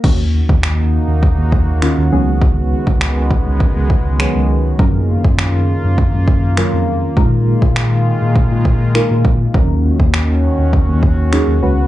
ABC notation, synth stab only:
X:1
M:4/4
L:1/8
Q:1/4=101
K:Ebm
V:1 name="Synth stab"
[E,B,DG]3 z3 [E,B,DF] [G,CDA]- | [G,CDA]2 z4 [G,CDA] z | [G,DFB]3 z3 [G,DFB] z | [A,EFB]3 z3 [A,EFB] z |
[G,DEB]3 z3 [G,DEA] [A,DGc] |]